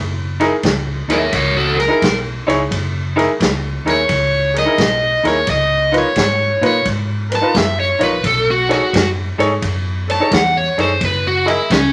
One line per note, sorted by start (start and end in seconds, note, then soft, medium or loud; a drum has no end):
0.00 0.49 F#1 medium
0.40 0.51 D#4 medium
0.40 0.52 E4 medium
0.40 0.52 G#4 medium
0.40 0.52 A#4 medium
0.40 snare soft
0.40 ride medium
0.63 1.00 C#2 medium
0.63 kick medium
0.63 snare loud
0.63 ride medium
1.08 1.27 D#2 medium
1.08 1.20 D#4 medium
1.08 1.21 E4 medium
1.08 1.21 G#4 medium
1.08 1.22 A#4 medium
1.08 1.33 C#5 medium
1.08 1.33 E5 medium
1.08 snare soft
1.08 ride medium
1.32 1.88 C#2 loud
1.32 1.55 A#4 medium
1.32 1.56 C#5 medium
1.32 kick medium
1.32 snare soft
1.32 ride medium
1.57 1.77 F#4 medium
1.57 1.78 A4 medium
1.77 1.83 G#4 soft
1.77 1.84 A#4 soft
1.77 2.17 A#4 medium
1.77 ride medium
1.81 snare soft
1.88 2.00 D#4 medium
1.88 2.00 E4 medium
1.88 2.01 G#4 medium
1.88 2.01 A#4 medium
2.02 2.39 B1 medium
2.02 kick medium
2.02 snare loud
2.02 ride medium
2.47 2.66 C#2 medium
2.47 2.59 D#4 medium
2.47 2.59 E4 medium
2.47 2.59 G#4 medium
2.47 2.59 C#5 medium
2.47 ride medium
2.51 snare soft
2.71 3.26 F#1 loud
2.71 kick medium
2.71 snare soft
2.71 ride medium
3.16 3.28 D#4 medium
3.16 3.28 E4 medium
3.16 3.28 G#4 medium
3.16 3.29 A#4 medium
3.16 ride medium
3.20 snare soft
3.40 3.77 C#2 medium
3.40 kick medium
3.40 snare loud
3.40 ride medium
3.85 4.03 D#2 medium
3.85 3.97 D#4 medium
3.85 3.97 E4 medium
3.85 3.98 G#4 medium
3.85 3.98 A#4 medium
3.85 ride medium
3.89 4.55 C#5 medium
3.89 snare soft
4.09 4.65 C#2 medium
4.09 kick medium
4.09 snare soft
4.09 ride medium
4.54 4.60 G#4 soft
4.54 4.61 A#4 medium
4.54 snare soft
4.54 ride medium
4.59 5.24 D#5 medium
4.65 4.77 D#4 medium
4.65 4.78 E4 medium
4.65 4.78 G#4 medium
4.65 4.78 A#4 medium
4.78 5.15 B1 medium
4.78 kick medium
4.78 snare loud
4.78 ride medium
5.23 5.42 D#2 medium
5.23 5.35 D#4 medium
5.23 5.36 E4 medium
5.23 5.36 G#4 medium
5.23 5.36 A#4 medium
5.23 snare soft
5.23 ride medium
5.27 5.48 C#5 medium
5.47 6.03 C#2 medium
5.47 5.94 D#5 medium
5.47 kick medium
5.47 snare soft
5.47 ride medium
5.92 6.04 D#4 medium
5.92 6.04 F4 medium
5.92 6.05 A#4 medium
5.92 6.05 B4 medium
5.92 snare soft
5.92 ride medium
5.98 6.63 C#5 medium
6.16 6.54 G#2 medium
6.16 kick medium
6.16 snare loud
6.16 ride medium
6.61 6.80 A#2 medium
6.61 6.73 D#4 medium
6.61 6.74 F4 medium
6.61 6.74 A#4 medium
6.61 6.74 B4 medium
6.61 snare soft
6.61 ride medium
6.66 6.87 C#5 medium
6.85 7.41 G#2 medium
6.85 kick medium
6.85 snare soft
6.85 ride medium
7.30 7.37 A#4 soft
7.30 7.38 B4 soft
7.30 snare soft
7.30 ride medium
7.35 7.56 A5 loud
7.41 7.54 D#4 medium
7.41 7.54 F4 medium
7.41 7.54 A#4 medium
7.41 7.54 B4 medium
7.54 7.92 F#2 medium
7.54 7.79 E5 medium
7.54 kick medium
7.54 snare loud
7.54 ride medium
7.80 8.01 C#5 medium
7.99 8.19 A#1 medium
7.99 8.11 D#4 medium
7.99 8.12 F4 medium
7.99 8.12 A#4 medium
7.99 8.12 C#5 medium
7.99 snare soft
7.99 ride medium
8.03 8.24 B4 medium
8.23 8.79 B1 loud
8.23 8.48 A4 medium
8.23 kick medium
8.23 snare soft
8.23 ride medium
8.51 8.71 F#4 medium
8.69 8.81 D#4 medium
8.69 8.81 G#4 medium
8.69 8.81 A4 medium
8.69 8.82 C#5 medium
8.69 snare soft
8.69 ride medium
8.73 9.09 F#4 medium
8.93 9.30 F#2 medium
8.93 kick medium
8.93 snare loud
8.93 ride medium
9.38 9.57 G#2 medium
9.38 9.50 D#4 medium
9.38 9.51 G#4 medium
9.38 9.51 A4 medium
9.38 9.51 C#5 medium
9.38 snare soft
9.38 ride medium
9.62 10.18 F#2 medium
9.62 kick medium
9.62 snare soft
9.62 ride medium
10.08 10.14 A4 soft
10.08 10.15 C#5 medium
10.08 10.32 A5 medium
10.08 snare soft
10.08 ride medium
10.20 10.31 D#4 medium
10.20 10.32 G#4 medium
10.20 10.32 A4 medium
10.20 10.32 C#5 medium
10.31 10.69 E2 medium
10.31 10.55 F#5 medium
10.31 kick medium
10.31 snare loud
10.31 ride medium
10.57 10.78 C#5 medium
10.78 10.96 F#2 medium
10.78 10.89 D#4 medium
10.78 10.89 G#4 medium
10.78 10.90 A4 medium
10.78 11.01 C5 medium
10.78 10.90 C#5 medium
10.78 snare soft
10.78 ride medium
11.01 11.56 F#1 loud
11.01 kick medium
11.01 snare soft
11.01 ride medium
11.05 11.25 B4 medium
11.27 11.48 F#4 medium
11.46 11.58 E4 medium
11.46 11.71 E4 medium
11.46 11.58 G#4 medium
11.46 11.59 A#4 medium
11.46 11.59 D#5 medium
11.46 snare soft
11.46 ride medium
11.70 11.93 C#2 medium
11.70 11.93 C#4 medium
11.70 kick medium
11.70 snare loud
11.70 ride medium